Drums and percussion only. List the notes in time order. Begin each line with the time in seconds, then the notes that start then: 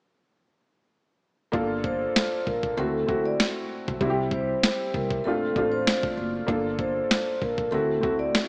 1.53 kick
1.84 kick
2.16 snare
2.47 kick
2.63 kick
3.09 kick
3.40 snare
3.88 kick
4.01 kick
4.31 kick
4.63 snare
4.94 kick
5.11 kick
5.56 kick
5.87 snare
6.03 kick
6.48 kick
6.79 kick
7.11 snare
7.42 kick
7.58 kick
8.03 kick
8.35 snare